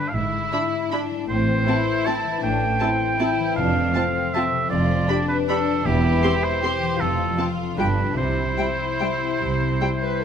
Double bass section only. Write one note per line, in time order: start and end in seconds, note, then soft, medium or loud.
0.14 0.44 G#1 medium
1.29 1.60 A1 medium
2.43 2.74 A1 medium
3.57 3.88 F1 medium
4.71 5.02 F1 medium
5.85 6.16 E1 medium
7.00 7.31 F1 medium
7.78 8.11 G1 medium
8.18 8.51 C2 soft
9.41 9.74 C2 soft